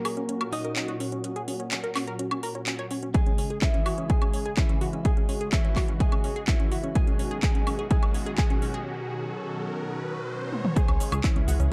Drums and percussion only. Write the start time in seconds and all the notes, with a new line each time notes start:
0.05 open hi-hat, high woodblock
0.17 closed hi-hat
0.29 closed hi-hat
0.41 closed hi-hat, high woodblock
0.53 open hi-hat
0.65 closed hi-hat
0.76 clap, closed hi-hat
0.88 closed hi-hat
1.00 open hi-hat
1.12 closed hi-hat
1.24 closed hi-hat
1.36 closed hi-hat
1.48 open hi-hat
1.60 closed hi-hat
1.71 clap, closed hi-hat
1.84 closed hi-hat
1.95 clap, open hi-hat, high woodblock
2.07 closed hi-hat
2.19 closed hi-hat
2.31 closed hi-hat, high woodblock
2.43 open hi-hat
2.55 closed hi-hat
2.66 clap, closed hi-hat
2.79 closed hi-hat
2.91 open hi-hat
3.03 closed hi-hat
3.14 kick, closed hi-hat
3.26 closed hi-hat
3.38 open hi-hat
3.50 closed hi-hat
3.62 kick, clap, closed hi-hat
3.74 closed hi-hat
3.86 open hi-hat, high woodblock
3.98 closed hi-hat
4.10 kick, closed hi-hat
4.22 closed hi-hat, high woodblock
4.33 open hi-hat
4.46 closed hi-hat
4.57 kick, clap, closed hi-hat
4.69 closed hi-hat
4.81 open hi-hat
4.93 closed hi-hat
5.05 kick, closed hi-hat
5.17 closed hi-hat
5.29 open hi-hat
5.41 closed hi-hat
5.52 kick, clap, closed hi-hat
5.65 closed hi-hat
5.76 kick, clap, open hi-hat, high woodblock
5.88 closed hi-hat
6.00 kick, closed hi-hat
6.12 closed hi-hat, high woodblock
6.24 open hi-hat
6.36 closed hi-hat
6.47 kick, clap, closed hi-hat
6.60 closed hi-hat
6.72 open hi-hat
6.84 closed hi-hat
6.95 kick, closed hi-hat
7.07 closed hi-hat
7.19 open hi-hat
7.31 closed hi-hat
7.43 kick, clap, closed hi-hat
7.55 closed hi-hat
7.67 open hi-hat, high woodblock
7.79 closed hi-hat
7.91 kick, closed hi-hat
8.03 closed hi-hat, high woodblock
8.14 open hi-hat
8.26 closed hi-hat
8.38 kick, clap, closed hi-hat
8.50 closed hi-hat
8.62 open hi-hat
8.74 closed hi-hat
10.53 high tom
10.65 mid tom
10.76 kick, closed hi-hat, shaker
10.88 closed hi-hat, high woodblock
11.00 open hi-hat, shaker
11.12 closed hi-hat, high woodblock, shaker
11.24 kick, clap, closed hi-hat, shaker
11.36 closed hi-hat
11.48 open hi-hat, shaker
11.60 closed hi-hat, shaker